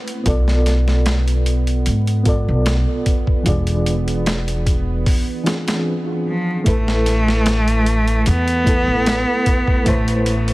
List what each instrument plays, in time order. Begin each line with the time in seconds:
Already playing: reed electric piano A3 C4 E4 B4, synth drone B3
0.07 closed hi-hat
0.24 upright bass B1, reed electric piano B3 F4 A4, kick, closed hi-hat
0.29 reed electric piano D5
0.48 snare
0.66 snare, closed hi-hat
0.88 snare
1.06 snare, closed hi-hat
1.28 closed hi-hat
1.46 closed hi-hat
1.67 closed hi-hat
1.86 upright bass G#2, closed hi-hat
2.07 closed hi-hat
2.23 reed electric piano B3 F4 A4, kick, closed hi-hat
2.29 reed electric piano D5
2.48 upright bass B1
2.66 snare, closed hi-hat
3.06 kick, closed hi-hat
3.27 kick
3.43 upright bass E1, reed electric piano E3 D4 F4, kick, closed hi-hat
3.47 reed electric piano G#4 D5
3.67 closed hi-hat
3.86 closed hi-hat
4.08 closed hi-hat
4.26 snare, closed hi-hat
4.48 closed hi-hat
4.66 kick, closed hi-hat
5.06 kick, open hi-hat
5.43 reed electric piano E3 D4 F4 G#4, snare, closed hi-hat
5.48 reed electric piano C4
5.68 snare, closed hi-hat
6.28 cello F3
6.64 upright bass A1, reed electric piano A3 E4 B4, kick, closed hi-hat
6.69 cello A3, reed electric piano A4
6.88 snare
7.06 snare, closed hi-hat
7.28 snare
7.46 snare, closed hi-hat
7.68 closed hi-hat
7.86 closed hi-hat
8.08 closed hi-hat
8.26 upright bass E2, cello B3, closed hi-hat
8.48 closed hi-hat
8.64 reed electric piano A3 E4 B4, kick, closed hi-hat
8.69 reed electric piano A4
8.88 upright bass A1
9.06 snare, closed hi-hat
9.46 kick, closed hi-hat
9.68 kick
9.84 upright bass A1, reed electric piano A3 E4 B4, cello A3, kick, closed hi-hat
9.89 reed electric piano C5
10.08 closed hi-hat
10.26 cello A3, closed hi-hat
10.48 closed hi-hat